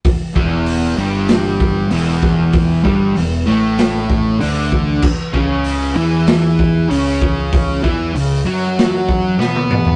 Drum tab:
CC |----------------|----------------|x---------------|----------------|
HH |o---o---o---o---|o---o---o---o---|----o---o---o---|o---o---o-------|
SD |--------o-----o-|--------o-------|--------o-------|--------o---o---|
T1 |----------------|----------------|----------------|-------------o--|
T2 |----------------|----------------|----------------|--------------o-|
FT |----------------|----------------|----------------|---------------o|
BD |o-o-------o---o-|o-o-------o---o-|o-o-------o---o-|o-o-------o-----|